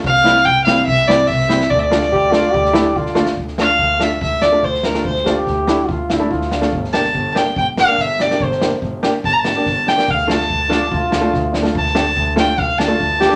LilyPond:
<<
  \new Staff \with { instrumentName = "Violin" } { \time 4/4 \key d \minor \tempo 4 = 143 f''4 g''8 f''8 e''8 d''8 e''4 | \tuplet 3/2 { d''16 e''16 d''4~ } d''2~ d''8 r8 | r8 f''4 e''8 e''8 d''8 c''8 bes'8 | c''8 r2. r8 |
r8 a''8.~ a''32 a''32 g''8 g''8 f''8 e''8 d''8 | c''8 r4. \tuplet 3/2 { a''16 bes''16 a''4~ } a''8 g''8 | f''8 a''2~ a''8 r4 | a''4. g''8 f''8 a''4. | }
  \new Staff \with { instrumentName = "Trombone" } { \time 4/4 \key d \minor r1 | r4 g'8 f'8 g'4 f'4 | r1 | r8 g'4. f'8 e'8 f'4~ |
f'16 r2. r8. | r1 | r4. d'8 f'4.~ f'16 r16 | r2. r8 g'8 | }
  \new Staff \with { instrumentName = "Upright piano" } { \time 4/4 \key d \minor r8 <g c' e'>16 r8. <g c' e'>16 r8. <g c' e'>16 r8. <g c' e'>16 r16 | r8 <a d' f'>16 r8. <a d' f'>16 r8. <a d' e'>16 r8. <a d' f'>16 r16 | r8 <a d' f'>16 r8. <a d' f'>16 r8. <d' f'>16 <a d' f'>16 r8 <d' f'>16 <a d' f'>16 | r8 <a d' f'>16 r8. <a d' e'>16 r8. <d' f'>16 <a d' e'>16 r8 <d' f'>16 <a d' f'>16 |
r8 <bes d' g'>16 r8. <bes d' g'>16 r8. <d' g'>16 <bes d' g'>16 r8 <d' g'>16 <bes d' g'>16 | r8 <bes d' g'>16 r8. <bes d' g'>16 r8. <d' g'>16 <bes d' g'>16 r8 <d' g'>16 <bes d' g'>16 | r8 <a d' f'>16 r8. <a d' f'>16 r8. <d' f'>16 <a d' f'>16 r8 <d' f'>16 <a d' f'>16 | r8 <a d' g'>16 r8. <a d' f'>16 r8. <d' g'>16 <a d' f'>16 r8 <d' f'>16 <a d' g'>16 | }
  \new Staff \with { instrumentName = "Double bass" } { \clef bass \time 4/4 \key d \minor c,4 c,8 r8 c,4 c,4 | d,4 d,8 r8 d,4 d4 | d,4 d,8 r8 d,8 d,16 r16 d,4 | d,4 d,8 r8 d,8 d,16 r16 d,4 |
g,,4 g,,8 r8 g,,8 g,,16 r16 g,,4 | g,,4 g,,8 r8 g,,8 g,,16 r16 g,,4 | d,4 d,8 r8 d,8 d,16 r16 d,4 | d,4 d,8 r8 d,8 d,16 r16 d,4 | }
  \new DrumStaff \with { instrumentName = "Drums" } \drummode { \time 4/4 bd8 sn16 sn16 bd8 sn8 bd16 sn16 sn8 <bd sn>16 sn16 sn16 sn16 | bd8 sn16 sn16 bd8 sn8 bd16 sn16 sn8 bd16 sn16 sn16 sn16 | bd16 sn16 sn8 bd8 sn8 bd8 sn8 bd16 sn16 sn16 sn16 | bd16 sn16 sn8 <bd sn>8 sn8 bd8 sn8 bd16 sn16 sn16 sn16 |
bd16 sn16 sn16 sn16 bd8 sn8 bd8 sn8 <bd sn>8 sn16 sn16 | bd16 sn16 sn8 bd8 sn8 bd8 sn8 <bd sn>8 sn16 sn16 | bd8 sn16 sn16 bd8 sn8 bd8 sn8 <bd sn>8 sn16 sn16 | bd16 sn16 sn8 bd8 sn8 bd8 sn8 bd8 sn16 sn16 | }
>>